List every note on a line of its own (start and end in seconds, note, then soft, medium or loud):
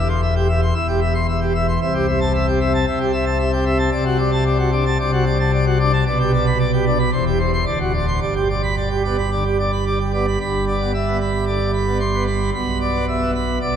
0.00 0.73 E1 medium
0.00 0.73 E2 medium
0.09 0.21 C6 medium
0.22 0.34 E5 medium
0.35 0.47 G4 medium
0.48 0.60 E5 medium
0.62 0.74 C6 medium
0.75 1.77 E1 medium
0.75 1.77 E2 medium
0.75 0.87 E5 medium
0.88 1.00 G4 medium
1.01 1.13 E5 medium
1.14 1.26 C6 medium
1.28 1.40 E5 medium
1.41 1.53 G4 medium
1.55 1.66 E5 medium
1.68 1.79 C6 medium
1.81 2.85 C2 medium
1.81 2.85 C3 medium
1.81 1.93 E5 medium
1.94 2.06 G4 medium
2.08 2.19 E5 medium
2.21 2.32 A5 loud
2.34 2.46 E5 medium
2.47 2.59 G4 medium
2.61 2.72 E5 medium
2.74 2.86 A5 medium
2.87 3.89 C2 medium
2.87 3.89 C3 medium
2.87 2.99 E5 medium
3.00 3.12 G4 medium
3.13 3.25 E5 medium
3.26 3.38 A5 medium
3.39 3.51 E5 medium
3.52 3.64 G4 medium
3.65 3.77 E5 medium
3.79 3.90 A5 medium
3.92 4.97 C2 medium
3.92 4.97 C3 medium
3.92 4.04 D5 medium
4.05 4.17 F#4 medium
4.18 4.30 D5 medium
4.32 4.44 A5 loud
4.46 4.57 D5 medium
4.59 4.71 F#4 medium
4.72 4.84 D4 medium
4.72 4.84 D5 medium
4.86 4.98 A5 medium
4.99 6.03 C2 medium
4.99 6.03 C3 medium
4.99 5.11 D5 medium
5.13 5.24 F#4 medium
5.26 5.38 D5 medium
5.39 5.51 A5 medium
5.53 5.65 D5 medium
5.66 5.78 F#4 medium
5.80 5.92 D4 medium
5.80 5.92 D5 medium
5.93 6.04 A5 medium
6.06 7.09 B1 medium
6.06 7.09 B2 medium
6.06 6.18 D5 medium
6.20 6.31 G4 medium
6.33 6.45 D5 medium
6.46 6.58 B5 medium
6.59 6.71 D5 medium
6.73 6.85 G4 medium
6.86 6.98 D4 medium
6.86 6.98 D5 medium
6.99 7.10 B5 medium
7.13 7.65 E1 medium
7.13 7.65 E2 medium
7.13 7.25 C5 medium
7.26 7.38 G4 medium
7.39 7.51 C5 medium
7.53 7.64 C6 medium
7.66 8.20 D1 medium
7.66 8.20 D2 medium
7.66 7.78 D5 medium
7.80 7.92 F#4 medium
7.93 8.06 D5 medium
8.08 8.19 C6 medium
8.22 10.37 G1 medium
8.22 10.37 G2 medium
8.22 8.34 D5 medium
8.35 8.48 G4 medium
8.49 8.62 D5 medium
8.63 8.75 B5 medium
8.77 8.89 D5 medium
8.90 9.02 G4 medium
9.04 9.17 B3 medium
9.04 9.17 D5 medium
9.18 9.30 B5 medium
9.31 9.44 D3 medium
9.31 9.44 D5 medium
9.45 9.57 G4 medium
9.59 9.71 D5 medium
9.72 9.85 B5 medium
9.86 9.98 D5 medium
10.00 10.12 G4 medium
10.14 10.26 B3 medium
10.14 10.26 D5 medium
10.27 10.39 B5 medium
10.41 12.51 G1 medium
10.41 12.51 G2 medium
10.41 10.65 B5 medium
10.67 10.91 D5 medium
10.80 10.93 B3 medium
10.94 11.17 E5 medium
11.07 11.19 B3 medium
11.21 11.45 B5 medium
11.47 11.59 D3 medium
11.47 11.71 D5 medium
11.74 11.98 B5 medium
11.87 11.99 B3 medium
12.00 12.23 C6 medium
12.13 12.26 B3 medium
12.27 12.50 B5 medium
12.54 13.59 B1 medium
12.54 13.59 B2 medium
12.54 12.78 B5 medium
12.81 13.05 D5 medium
12.95 13.06 B3 medium
13.08 13.31 E5 medium
13.21 13.33 B3 medium
13.35 13.59 B5 medium
13.61 13.76 B1 medium
13.61 13.76 B2 medium
13.61 13.76 D5 medium